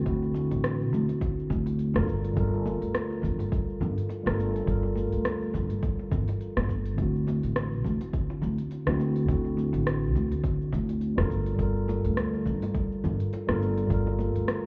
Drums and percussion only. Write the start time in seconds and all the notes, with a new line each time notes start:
0.06 kick, open hi-hat, cabasa
0.22 high bongo, cabasa
0.34 high conga, cabasa
0.51 open hi-hat, high bongo, cabasa
0.64 cross-stick, open hi-hat, cabasa
0.81 cabasa
0.93 high bongo, low conga, cabasa
1.09 open hi-hat, high conga, cabasa
1.21 kick, open hi-hat, high bongo, cabasa
1.39 cabasa
1.50 kick, low conga, cabasa
1.66 open hi-hat, high bongo, cabasa
1.79 open hi-hat, cabasa
1.94 cross-stick, high bongo, high conga, cabasa
2.08 kick, cabasa
2.25 open hi-hat, cabasa
2.36 kick, open hi-hat, high bongo, cabasa
2.54 cabasa
2.65 high bongo, high conga, cabasa
2.82 open hi-hat, cabasa
2.95 cross-stick, open hi-hat, cabasa
3.10 high bongo, cabasa
3.22 kick, low conga, cabasa
3.39 open hi-hat, high bongo, high conga, cabasa
3.52 kick, open hi-hat, cabasa
3.69 cabasa
3.81 high bongo, low conga, cabasa
3.98 open hi-hat, cabasa
4.09 open hi-hat, high bongo, cabasa
4.26 cross-stick, high conga, cabasa
4.40 cabasa
4.55 open hi-hat, high bongo, cabasa
4.67 kick, open hi-hat, cabasa
4.83 high bongo, cabasa
4.95 high conga, cabasa
5.13 open hi-hat, cabasa
5.24 cross-stick, open hi-hat, high bongo, cabasa
5.42 cabasa
5.54 kick, high bongo, low conga, cabasa
5.70 open hi-hat, high conga, cabasa
5.83 kick, open hi-hat, cabasa
5.99 high bongo, cabasa
6.12 kick, low conga, cabasa
6.28 open hi-hat, high bongo, cabasa
6.41 open hi-hat, cabasa
6.57 cross-stick, high conga, cabasa
6.69 kick, high bongo, cabasa
6.86 open hi-hat, cabasa
6.98 kick, open hi-hat, cabasa
7.15 cabasa
7.27 high bongo, high conga, cabasa
7.43 open hi-hat, cabasa
7.56 cross-stick, open hi-hat, high bongo, cabasa
7.73 cabasa
7.85 kick, low conga, cabasa
8.01 open hi-hat, high bongo, high conga, cabasa
8.13 kick, open hi-hat, cabasa
8.30 high bongo, cabasa
8.42 low conga, cabasa
8.58 open hi-hat, cabasa
8.71 open hi-hat, high bongo, cabasa
8.87 cross-stick, high conga, cabasa
9.00 high bongo, cabasa
9.16 open hi-hat, cabasa
9.29 kick, open hi-hat, cabasa
9.45 high bongo, cabasa
9.57 high conga, cabasa
9.73 open hi-hat, high bongo, cabasa
9.87 cross-stick, open hi-hat, cabasa
10.03 cabasa
10.15 high bongo, low conga, cabasa
10.31 open hi-hat, high conga, cabasa
10.44 kick, open hi-hat, high bongo, cabasa
10.61 cabasa
10.73 kick, low conga, cabasa
10.89 open hi-hat, high bongo, cabasa
11.01 open hi-hat, cabasa
11.18 cross-stick, high bongo, high conga, cabasa
11.30 kick, cabasa
11.46 open hi-hat, cabasa
11.59 kick, open hi-hat, high bongo, cabasa
11.76 cabasa
11.88 high bongo, high conga, cabasa
12.05 open hi-hat, cabasa
12.17 cross-stick, open hi-hat, cabasa
12.34 high bongo, cabasa
12.46 kick, low conga, cabasa
12.62 open hi-hat, high bongo, high conga, cabasa
12.75 kick, open hi-hat, cabasa
12.92 cabasa
13.04 high bongo, low conga, cabasa
13.20 open hi-hat, cabasa
13.33 open hi-hat, high bongo, cabasa
13.49 cross-stick, high conga, cabasa
13.62 cabasa
13.78 open hi-hat, high bongo, cabasa
13.90 kick, open hi-hat, cabasa
14.07 high bongo, cabasa
14.19 high conga, cabasa
14.36 open hi-hat, cabasa
14.47 cross-stick, open hi-hat, high bongo, cabasa